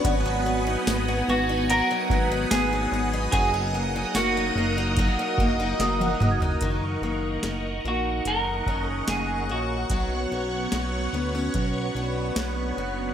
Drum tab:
HH |x---x---x---x---|x---x---x---x---|x---x---x---x---|x---x---x---x---|
TB |----x-------x---|----x-----------|----------------|----------------|
SD |----o-------o---|----o-------o---|----o-------o---|----o-------o---|
T1 |----------------|-------------o--|----------------|----------------|
T2 |----------------|--------------o-|----------------|----------------|
FT |----------------|---------------o|----------------|----------------|
BD |o---------o-----|o-------o-o-----|o---------o-----|o-------o-------|